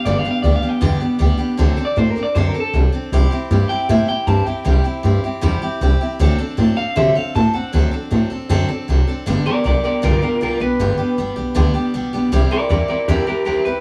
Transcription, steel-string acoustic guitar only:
\new Staff \with { instrumentName = "Steel-string acoustic guitar" } { \time 4/4 \key g \major \tempo 4 = 156 <g, d g b d' g'>8 <g b d' g'>8 <g b d' g'>8 <g b d' g'>8 <g, d g b d' g'>8 <g b d' g'>8 <g b d' g'>8 <g b d' g'>8 | <d fis c' d' a'>8 <c' d' a'>8 <fis c' d' a'>8 <c' d' a'>8 <d fis c' d' a'>8 <c' d' a'>8 <fis c' d' a'>8 <c' d' a'>8 | <c g c' e' g'>8 <c' e' g'>8 <g c' e' g'>8 <c' e' g'>8 <c g c' e' g'>8 <c' e' g'>8 <g c' e' g'>8 <c' e' g'>8 | <c g c' e' g'>8 <c' e' g'>8 <g c' e' g'>8 <c' e' g'>8 <c g c' e' g'>8 <c' e' g'>8 <g c' e' g'>8 <c' e' g'>8 |
<d fis c' d' a'>8 <c' d' a'>8 <fis c' d' a'>8 <c' d' a'>8 <d fis c' d' a'>8 <c' d' a'>8 <fis c' d' a'>8 <c' d' a'>8 | <d fis c' d' a'>8 <c' d' a'>8 <fis c' d' a'>8 <c' d' a'>8 <d fis c' d' a'>8 <c' d' a'>8 <fis c' d' a'>8 <c' d' a'>8 | <g, d g b d' g'>8 <g b d' g'>8 <g b d' g'>8 <g b d' g'>8 <g, d g b d' g'>8 <g b d' g'>8 <g b d' g'>8 <g b d' g'>8 | <g, d g b d' g'>8 <g b d' g'>8 <g b d' g'>8 <g b d' g'>8 <g, d g b d' g'>8 <g b d' g'>8 <g b d' g'>8 <g b d' g'>8 |
<c g c' e' g'>8 <c' e' g'>8 <g c' e' g'>8 <c' e' g'>8 <c g c' e' g'>8 <c' e' g'>8 <g c' e' g'>8 <c' e' g'>8 | }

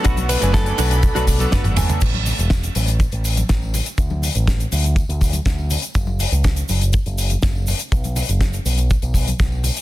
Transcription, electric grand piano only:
\new Staff \with { instrumentName = "Electric grand piano" } { \time 4/4 \key b \dorian \tempo 4 = 122 <fis a b d' a'>8. <fis a b d' gis''>4. <fis a b d' a'>16 r16 <fis a b d' a'>4~ <fis a b d' a'>16 | r1 | r1 | r1 |
r1 | }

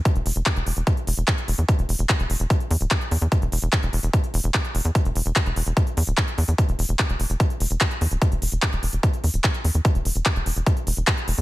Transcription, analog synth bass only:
\new Staff \with { instrumentName = "Analog synth bass" } { \clef bass \time 4/4 \key c \major \tempo 4 = 147 r16 e,,16 e,,16 e,,16 r16 e,,16 e,,16 e,,16 r8 e,,16 e,,16 r8 e,,16 e,16 | r16 e,,16 e,,16 e,,16 r16 e,,16 e,,16 e,,16 r8 e,16 d,,16 r8 e,16 e,16 | r16 e,,16 e,,16 e,,16 r16 e,,16 e,,16 e,,16 r8 e,,16 e,,16 r8 e,,16 e,16 | r16 e,,16 e,,16 e,,16 r16 e,,16 e,,16 e,,16 r8 e,16 d,,16 r8 e,16 e,16 |
r16 e,,16 e,,16 e,,16 r16 e,,16 e,,16 e,,16 r8 e,,16 e,,16 r8 e,16 d,,16 | r16 e,,16 e,,16 e,,16 r16 e,,16 e,,16 e,,16 r8 e,16 d,,16 r8 e,16 e,16 | r16 e,,16 e,,16 e,,16 r16 e,,16 e,,16 e,,16 r8 e,,16 e,,16 r8 e,,16 e,16 | }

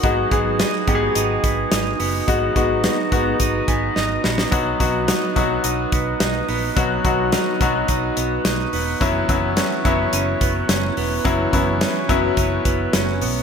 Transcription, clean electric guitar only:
\new Staff \with { instrumentName = "Clean electric guitar" } { \time 4/4 \key gis \minor \tempo 4 = 107 fis8 fis8 dis'8 b8 dis'8 b8 dis'8 b8 | fis8 fis8 dis'8 b8 dis'8 b8 dis'8 b8 | fis8 fis8 dis'8 b8 dis'8 b8 dis'8 b8 | fis8 fis8 dis'8 b8 dis'8 b8 dis'8 b8 |
e8 e8 cis'8 b8 cis'8 b8 cis'8 b8 | e8 e8 cis'8 b8 cis'8 b8 cis'8 b8 | }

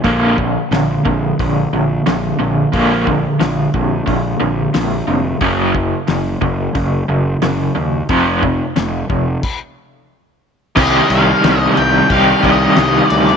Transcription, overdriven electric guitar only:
\new Staff \with { instrumentName = "Overdriven electric guitar" } { \clef bass \time 4/4 \key bes \major \tempo 4 = 90 <bes, d bes>8 <bes, d>8 <bes, d>8 <bes, d>8 <bes, d>8 <bes, d>8 <bes, d>8 <bes, d>8 | <bes, d bes>8 <bes, d>8 <bes, d>8 <bes, d>8 <bes, d>8 <bes, d>8 <bes, d>8 <bes, d>8 | <ges, des ges>8 <ges, des>8 <ges, des>8 <ges, des>8 <ges, des>8 <ges, des>8 <ges, des>8 <ges, des>8 | <f, c f>8 <f, c>8 <f, c>8 <f, c>8 r2 |
<c ees g ees' g'>2 <c ees g ees' g'>2 | }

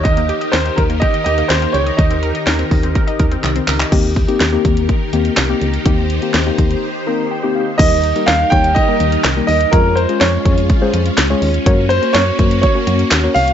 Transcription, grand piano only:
\new Staff \with { instrumentName = "Grand piano" } { \time 4/4 \key c \phrygian \tempo 4 = 124 ees''4 c''8 bes'8 ees''8 ees''8 c''8 des''8 | ees''2. r4 | r1 | r1 |
ees''4 f''8 g''8 ees''4. ees''8 | bes'8 c''8 des''2~ des''8 r8 | r8 c''8 des''4 des''4 r8 f''8 | }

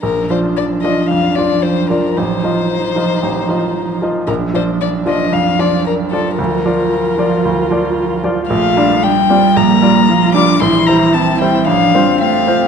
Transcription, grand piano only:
\new Staff \with { instrumentName = "Grand piano" } { \time 4/4 \key bes \major \tempo 4 = 113 bes,,8 <f f' d''>4 <f f' d''>8 f,8 <f f' d''>4 <f f' d''>8 | a,,8 <f f' ees''>4 <f f' ees''>8 a,,8 <f f' ees''>4 <f f' ees''>8 | bes,,8 <f f' d''>4 <f f' d''>8 f,8 <f f' d''>4 <f f' d''>8 | d,8 <f f' d''>4 <f f' d''>8 d,8 <f f' d''>4 <f f' d''>8 |
\key g \dorian bes,,8 <g f' d''>4 <g f' d''>8 bes,,8 <g f' d''>4 <g f' d''>8 | bes,,8 <g e' c''>4 <g e' c''>8 a,,8 <c' f' c''>4 <c' f' c''>8 | }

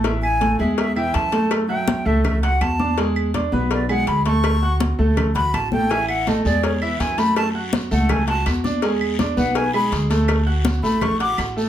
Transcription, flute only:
\new Staff \with { instrumentName = "Flute" } { \time 4/4 \key a \major \tempo 4 = 164 r8 gis''4 e''8 e''8 g''8 a''4 | r8 g''4 e''8 e''8 fis''8 a''4 | r2 d''8 fis''8 b''8 cis'''8~ | cis'''4 r4. b''8 a''8 g''8 |
gis''8 fis''8 dis''8 d''8 cis''8 e''8 gis''8 b''8 | a''8 r4 fis''8 gis''8 a''8 r4 | r4. fis''8 gis''8 b''8 r4 | r4. b''8 cis'''8 d'''8 r4 | }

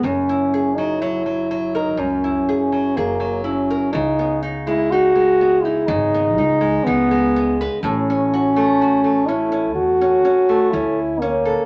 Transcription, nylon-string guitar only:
\new Staff \with { instrumentName = "Nylon-string guitar" } { \time 4/4 \key fis \mixolydian \tempo 4 = 62 << { r16 e'16 gis'8 fis16 r16 fis16 ais'8 e'16 gis'8 gis'8 e'16 ais'16 | r16 b16 dis'8 dis'8 b16 dis'8 b16 dis'8 dis'8 b16 b'16 | r16 cis'16 fis'8 fis'8 cis'16 cis'8 cis'16 cis'8 cis'8 cis'16 a'16 | } \\ { fis,8. fis16 r16 fis16 r8 fis,8. fis8 fis8. | cis8. gis8 gis8. cis8. gis8 gis8. | a,8. a8 a4. a8 r8. | } >> }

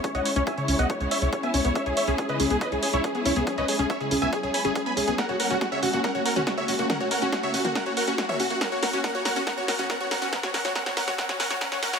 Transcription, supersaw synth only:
\new Staff \with { instrumentName = "Supersaw synth" } { \time 4/4 \key fis \mixolydian \tempo 4 = 140 cis''16 <dis'' fis''>16 cis''16 cis''16 <e'' gis''>16 cis''16 cis''16 <dis'' fis''>16 cis''16 cis''16 <cis'' e''>16 cis''16 cis''16 <e'' gis''>16 cis''16 cis''16 | <cis'' e''>16 gis'16 <cis'' e''>16 gis'16 gis'16 <b' dis''>16 gis'16 gis'16 <b' dis''>16 gis'16 gis'16 <e' cis''>16 gis'16 gis'16 <e' cis''>16 gis'16 | gis'16 <b' dis''>16 gis'16 gis'16 <cis'' e''>16 gis'16 gis'16 <e'' gis''>16 gis'16 gis'16 <gis'' b''>16 gis'16 gis'16 <gis'' b''>16 gis'16 gis'16 | <ais' fis''>16 fis'16 <ais' fis''>16 fis'16 fis'16 <cis'' e''>16 fis'16 fis'16 <ais' fis''>16 fis'16 <ais' fis''>16 fis'16 fis'16 <cis'' e''>16 fis'16 fis'16 |
<ais' fis''>16 fis'16 <ais' fis''>16 fis'16 fis'16 <cis'' e''>16 fis'16 fis'16 <ais' fis''>16 fis'16 <ais' fis''>16 fis'16 fis'16 <cis'' e''>16 fis'16 fis'16 | <ais' fis''>16 fis'16 <ais' fis''>16 fis'16 <ais' fis''>16 fis'16 <ais' fis''>16 fis'16 <ais' fis''>16 fis'16 <ais' fis''>16 fis'16 <ais' fis''>16 fis'16 <ais' fis''>16 fis'16 | <ais' fis''>16 fis'16 <ais' fis''>16 fis'16 <ais' fis''>16 fis'16 <ais' fis''>16 fis'16 <ais' fis''>16 fis'16 <ais' fis''>16 fis'16 <ais' fis''>16 fis'16 <ais' fis''>16 fis'16 | }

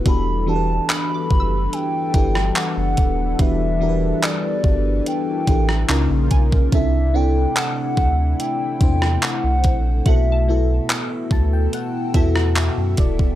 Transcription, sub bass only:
\new Staff \with { instrumentName = "Sub bass" } { \clef bass \time 4/4 \key e \minor \tempo 4 = 72 e,,4 r8 fis,,8 r8 g,,8 r16 fis,,16 dis,,8 | e,,4 r8 g,,8 r8 a,,8 cis,16 ais,,16 b,,8 | c,4 r8 d,8 r8 e,8 r16 c,16 ais,,8 | b,,4 r8 d,8 r8 e,8. fis,16 dis,,8 | }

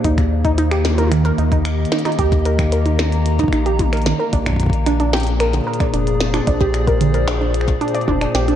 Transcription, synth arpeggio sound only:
\new Staff \with { instrumentName = "Synth arpeggio sound" } { \time 4/4 \key ees \major \tempo 4 = 112 ees'16 r8 ees'16 ees'16 g'16 r16 bes'16 ees16 bes'16 ees'16 ees'16 r8 ees'16 ees'16 | g'16 r16 bes'16 ees16 bes'16 ees'16 ees'16 r8 ees'16 ees'16 g'16 r16 bes'16 ees16 bes'16 | d'16 d'16 r8 d'16 d'16 g'16 r16 bes'16 d16 bes'16 d'16 d'16 r8 d'16 | d'16 g'16 r16 bes'16 d16 bes'16 d'16 d'16 r8 d'16 d''16 d'16 d'16 g'16 d'16 | }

